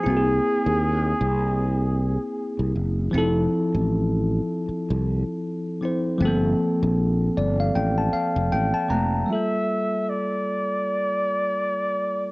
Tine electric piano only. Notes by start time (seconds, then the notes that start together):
0.04 A#3 E4
0.08 C4 F#4
0.17 G#4
3.11 F3 C4
3.15 E4 A4
5.81 F3 C4 E4
5.85 C5
6.18 F3 A3
6.23 C4 A4
6.27 A#3
7.37 D5
7.60 F5
7.75 G5
7.98 A5
8.13 F5
8.52 G5
8.74 A5
8.89 F3 A3 A#3 C4 A#5
9.26 G3 A3
9.30 F4 A4
9.35 A#3